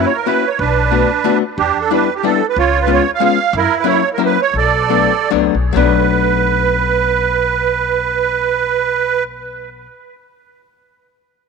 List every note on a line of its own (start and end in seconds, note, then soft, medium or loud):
0.00 0.11 A#3 medium
0.00 0.11 C#4 medium
0.00 0.11 E4 medium
0.00 0.11 F#4 medium
0.00 0.05 B4 medium
0.06 0.17 C#5 medium
0.14 0.26 A#4 medium
0.26 0.44 A#3 medium
0.26 0.44 C#4 medium
0.26 0.44 E4 medium
0.26 0.44 F#4 medium
0.26 0.49 B4 medium
0.48 0.59 C#5 medium
0.59 1.02 B1 loud
0.59 1.39 D4 medium
0.59 1.38 B4 medium
0.91 1.09 A3 medium
0.91 1.09 B3 medium
0.91 1.09 D4 soft
0.91 1.09 F#4 medium
1.24 1.42 A3 medium
1.24 1.42 B3 medium
1.24 1.42 D4 medium
1.24 1.43 F#4 medium
1.58 1.69 E2 loud
1.58 2.04 D4 medium
1.58 1.78 G4 medium
1.80 1.90 A4 medium
1.91 2.08 G3 medium
1.91 2.08 B3 soft
1.91 2.08 D4 medium
1.91 2.08 E4 medium
1.91 2.14 B4 medium
2.15 2.25 G4 medium
2.23 2.41 G3 medium
2.23 2.41 B3 medium
2.23 2.41 D4 medium
2.23 2.41 E4 medium
2.23 2.46 A4 medium
2.49 2.58 B4 medium
2.56 2.98 C#2 medium
2.56 3.03 F4 medium
2.56 2.79 C#5 loud
2.82 2.91 B4 medium
2.87 3.05 G#3 medium
2.87 3.05 B3 medium
2.87 3.05 C#4 medium
2.87 3.05 F4 medium
2.93 3.11 C#5 loud
3.15 3.23 F5 loud
3.20 3.37 G#3 medium
3.20 3.38 B3 medium
3.20 3.38 C#4 medium
3.20 3.38 F4 medium
3.25 3.56 F5 loud
3.53 3.64 F#2 loud
3.53 4.00 E4 medium
3.58 3.75 A#4 loud
3.79 3.88 B4 medium
3.84 4.02 F#3 medium
3.84 4.02 A#3 medium
3.84 4.02 C#4 medium
3.84 4.02 E4 medium
3.89 4.09 C#5 loud
4.14 4.22 A#4 medium
4.18 4.36 F#3 medium
4.18 4.37 A#3 medium
4.18 4.37 C#4 medium
4.18 4.37 E4 medium
4.25 4.41 B4 medium
4.42 4.56 C#5 loud
4.54 5.04 B1 medium
4.54 5.29 A4 medium
4.58 5.29 D5 medium
4.89 5.11 F#3 medium
4.89 5.11 A3 medium
4.89 5.11 B3 soft
4.89 5.11 D4 medium
5.30 5.52 C#2 medium
5.30 5.54 F#3 medium
5.30 5.54 A3 medium
5.30 5.54 B3 medium
5.30 5.54 D4 medium
5.55 5.74 B1 medium
5.73 9.85 B1 loud
5.73 9.82 F#3 medium
5.73 9.83 A3 medium
5.73 9.85 B3 medium
5.73 9.24 B4 medium
5.77 9.86 D4 medium